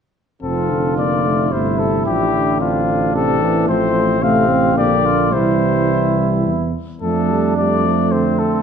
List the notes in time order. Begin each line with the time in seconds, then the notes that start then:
0.42 F1 F3 C4 F4 A4
0.70 D3
0.98 A#3 D5
1.26 A3
1.51 G1 C3 A3 E4 C5
1.79 A4
2.06 A1 F3 D4 G4
2.34 D3
2.60 C4 D4 F4
3.14 C3 C4 A4
3.42 E3
3.68 A1 F3 A3 C4 C5
4.21 C3 A3 C4 F5
4.49 C4
4.76 A#1 D3 A#3 G4 D5
5.06 F4
5.32 C2 E3 G3 E4 C5
6.46 E2
7.02 F2 F3 A3 D4 A4
7.32 G3
7.57 G3 A3 D5
7.86 F3
8.12 D3 C4 C5
8.39 A4